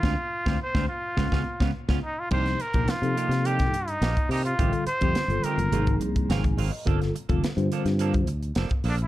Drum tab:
CC |----------------|x---------------|----------------|----------------|
HH |----------------|-xxxxxxxxxxxxxox|xxxxxxxxxxxxxxo-|xxxxxxxxxxxxxxox|
SD |o--o-o--oo-o-o--|-o--o--o-o--o---|----o-------o---|-o--o--o----o---|
BD |o--o-o--oo-o-o--|o--o-----o---o--|o--o-----o-o-o--|o--o-----o---o--|